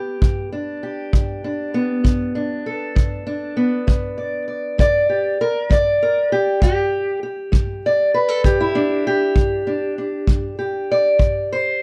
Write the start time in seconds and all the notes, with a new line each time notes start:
Already playing: B3 G4
0.22 G2, kick
0.52 D4
0.83 G4
1.13 G2, kick
1.44 D4
1.74 B3
2.04 G2, kick
2.35 D4
2.66 A4
2.95 G2, kick
3.27 D4
3.57 B3
3.87 G3, kick
4.18 D5
4.48 D5
4.78 G3 D5, kick
5.09 G4
5.41 A#4
5.70 G3 D5, kick
6.03 A#4
6.32 G4
6.62 G3 G4, kick
7.23 G4
7.52 G3, kick
7.86 D5
8.14 B4
8.29 A4
8.44 G3 G4, kick
8.61 E4
8.75 D4
9.07 G4
9.36 G3, kick
9.67 D4
9.98 D4
10.27 G3, kick
10.59 G4
10.92 D5
11.19 C3, kick
11.53 C5